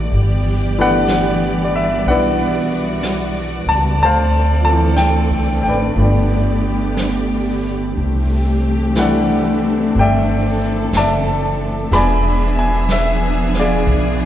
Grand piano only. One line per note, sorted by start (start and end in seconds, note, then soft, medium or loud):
0.00 0.10 F#3 soft
0.00 0.11 A3 soft
0.00 0.12 B3 soft
0.00 0.12 C4 soft
0.00 0.13 D4 soft
0.00 0.13 D#4 medium
0.78 4.01 E3 soft
0.78 4.01 A3 soft
0.78 2.05 B3 soft
0.78 2.07 D4 medium
0.78 2.09 B4 medium
0.78 1.63 D5 medium
0.78 1.68 F#5 loud
1.64 1.73 D5 medium
1.75 2.07 E5 medium
2.07 4.01 B3 soft
2.07 4.01 D4 soft
2.07 4.02 E4 soft
2.07 3.98 B4 medium
2.07 3.98 D5 medium
2.07 3.00 F#5 medium
3.69 3.98 A5 medium
4.03 5.95 C5 medium
4.03 5.96 F5 medium
4.03 4.63 A5 medium
4.61 5.93 F3 soft
4.65 5.96 A3 soft
4.65 4.99 A5 medium
4.69 6.01 E3 soft
4.69 5.99 C4 soft
4.97 5.61 G5 medium
5.63 7.60 G5 medium
5.69 7.63 B4 soft
5.69 7.63 D5 soft
5.95 7.96 F3 soft
5.95 7.98 A3 soft
5.99 7.98 B3 soft
5.99 7.99 D4 soft
8.96 11.91 E3 soft
8.96 11.92 G3 soft
8.96 11.92 A3 soft
8.96 11.91 D4 medium
8.96 9.92 F#5 medium
9.01 10.92 A4 medium
9.01 9.99 D5 soft
9.99 10.96 D5 medium
9.99 10.98 E5 medium
9.99 10.99 G5 medium
10.97 11.89 D5 medium
10.97 11.90 E5 medium
10.97 11.96 A5 medium
11.91 14.25 F3 soft
11.91 14.25 G#3 soft
11.91 14.25 B3 soft
11.91 14.25 D4 soft
11.91 13.58 D5 medium
11.91 12.57 G#5 medium
11.91 12.59 B5 medium
12.59 12.91 G#5 medium
12.92 13.51 E5 medium
13.59 14.25 F4 soft
13.59 14.25 G#4 soft
13.59 14.25 D5 medium